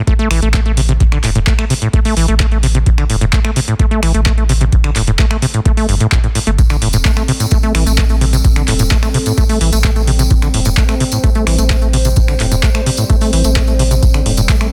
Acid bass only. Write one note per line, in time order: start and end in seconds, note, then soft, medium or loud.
0.07 0.14 A3 loud
0.19 0.29 A3 loud
0.31 0.40 E3 medium
0.42 0.49 A3 medium
0.54 0.60 A3 loud
0.66 0.72 A3 medium
0.77 0.81 C3 loud
0.89 0.93 C3 loud
1.00 1.04 A2 medium
1.12 1.18 D3 medium
1.24 1.30 A2 medium
1.35 1.39 A2 loud
1.47 1.53 A3 loud
1.59 1.65 A3 medium
1.70 1.74 C3 loud
1.82 1.88 A2 medium
1.94 2.00 A3 loud
2.05 2.15 A3 loud
2.17 2.26 E3 medium
2.28 2.35 A3 medium
2.40 2.46 A3 loud
2.52 2.58 A3 medium
2.63 2.67 C3 loud
2.75 2.79 C3 loud
2.86 2.90 A2 medium
2.98 3.04 D3 medium
3.10 3.16 A2 medium
3.21 3.25 A2 loud
3.33 3.39 A3 loud
3.45 3.51 A3 medium
3.56 3.60 C3 loud
3.68 3.74 A2 medium
3.79 3.86 A3 loud
3.91 4.01 A3 loud
4.03 4.12 E3 medium
4.14 4.21 A3 medium
4.26 4.32 A3 loud
4.38 4.44 A3 medium
4.49 4.53 C3 loud
4.61 4.65 C3 loud
4.72 4.76 A2 medium
4.84 4.90 D3 medium
4.96 5.02 A2 medium
5.07 5.11 A2 loud
5.19 5.25 A3 loud
5.31 5.37 A3 medium
5.42 5.46 C3 loud
5.54 5.60 A2 medium
5.65 5.72 A3 loud
5.77 5.87 A3 loud
5.89 5.95 G2 medium
6.00 6.07 A2 loud
6.12 6.18 A2 medium
6.24 6.28 A2 medium
6.35 6.39 A2 medium
6.47 6.51 A3 loud
6.59 6.62 A2 medium
6.70 6.77 D3 medium
6.82 6.88 A2 medium
6.93 6.97 A2 loud
7.05 7.11 A3 loud
7.17 7.23 A3 medium
7.28 7.32 C3 loud
7.40 7.46 A2 medium
7.51 7.58 A3 loud
7.63 7.73 A3 loud
7.75 7.84 E3 medium
7.86 7.93 A3 medium
7.98 8.04 A3 loud
8.10 8.16 A3 medium
8.21 8.25 C3 loud
8.33 8.37 C3 loud
8.45 8.48 A2 medium
8.56 8.63 D3 medium
8.68 8.74 A2 medium
8.79 8.83 A2 loud
8.91 8.97 A3 loud
9.03 9.09 A3 medium
9.14 9.18 C3 loud
9.26 9.32 A2 medium
9.38 9.44 A3 loud
9.49 9.59 A3 loud
9.61 9.71 E3 medium
9.73 9.79 A3 medium
9.84 9.91 A3 loud
9.96 10.02 A3 medium
10.07 10.11 C3 loud
10.19 10.23 C3 loud
10.31 10.35 A2 medium
10.42 10.49 D3 medium
10.54 10.60 A2 medium
10.66 10.69 A2 loud
10.77 10.84 A3 loud
10.89 10.95 A3 medium
11.00 11.04 C3 loud
11.12 11.18 A2 medium
11.24 11.30 A3 loud
11.35 11.45 A3 loud
11.47 11.57 E3 medium
11.59 11.65 A3 medium
11.70 11.77 A3 loud
11.82 11.88 A3 medium
11.93 11.97 C3 loud
12.05 12.09 C3 loud
12.17 12.21 A2 medium
12.28 12.35 D3 medium
12.40 12.46 A2 medium
12.52 12.55 A2 loud
12.63 12.70 A3 loud
12.75 12.81 A3 medium
12.86 12.90 C3 loud
12.98 13.04 A2 medium
13.10 13.16 A3 loud
13.21 13.31 A3 loud
13.33 13.43 E3 medium
13.45 13.51 A3 medium
13.56 13.63 A3 loud
13.68 13.74 A3 medium
13.79 13.83 C3 loud
13.91 13.95 C3 loud
14.03 14.07 A2 medium
14.14 14.21 D3 medium
14.26 14.32 A2 medium
14.38 14.41 A2 loud
14.49 14.56 A3 loud
14.61 14.67 A3 medium